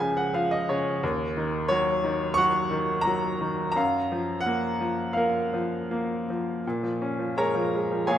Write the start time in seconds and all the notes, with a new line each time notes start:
Already playing: C#2 F3 A#4 F5
0.00 C#3 G#5
0.17 F#5
0.34 F3 F5
0.51 D#5
0.69 C#3 C#5
1.03 D#2
1.37 D#3
1.68 F#3 C#5
2.04 D#3
2.34 F#5 C#6
2.38 F#3
2.71 D#3
3.01 A#5
3.06 F#3
3.41 D#3
3.72 A#5
3.76 F#2 F5
4.12 F3
4.41 F#5
4.46 A#3
4.80 F3
5.13 A#3 A#4 F5
5.54 F3
5.91 A#3
6.30 F3
6.67 A#2
6.83 F3
7.02 C#4
7.19 F3
7.37 G#3 A#4 C#5 A#5
7.55 F3
7.74 G#3
7.92 F3
8.07 A#2 G#4 C#5 F5 G#5